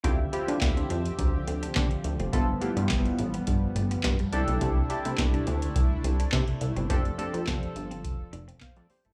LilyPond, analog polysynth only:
\new Staff \with { instrumentName = "Analog polysynth" } { \time 4/4 \key d \dorian \tempo 4 = 105 <c' e' f' g'>16 r16 <c' e' f' g'>4 r2 r8 | <b e' f' a'>16 r16 <b e' f' g'>4 r2 <d' e' g' a'>8~ | <d' e' g' a'>8 <d' e' g' a'>4 r2 r8 | <c' d' g' a'>16 r16 <c' d' g' a'>4 r4. <c'' f''>16 <a' d''>16 <g' c''>16 <e' a'>16 | }